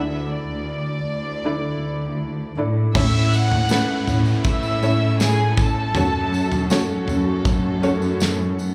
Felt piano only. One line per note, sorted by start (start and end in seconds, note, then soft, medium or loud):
0.00 1.04 D3 soft
0.00 1.38 A3 medium
0.00 1.38 D4 soft
0.00 1.38 E4 soft
0.00 1.38 D5 medium
1.44 2.52 A3 medium
1.44 2.52 D4 medium
1.44 2.52 E4 medium
1.44 2.53 D5 medium
2.57 2.93 A3 medium
2.57 2.93 D4 medium
2.57 2.94 E4 medium
2.57 2.94 D5 medium
2.94 4.04 A2 medium
2.94 3.66 A3 medium
2.94 3.66 C#4 medium
2.94 3.66 E4 medium
2.94 3.67 C#5 medium
3.70 4.77 A3 medium
3.70 4.77 C#4 medium
3.70 4.77 E4 medium
3.70 4.78 B4 medium
4.82 5.89 A3 medium
4.82 5.89 C#4 medium
4.82 5.90 E4 medium
4.82 5.90 C#5 medium
5.95 6.67 A3 medium
5.95 6.67 C#4 medium
5.95 6.67 F#4 medium
5.95 6.67 C#5 medium
6.70 7.77 A3 medium
6.70 7.77 C#4 medium
6.70 7.78 F#4 medium
6.70 7.78 C#5 medium
7.82 8.74 A3 medium
7.82 8.74 C#4 medium
7.82 8.74 F#4 medium
7.82 8.74 C#5 medium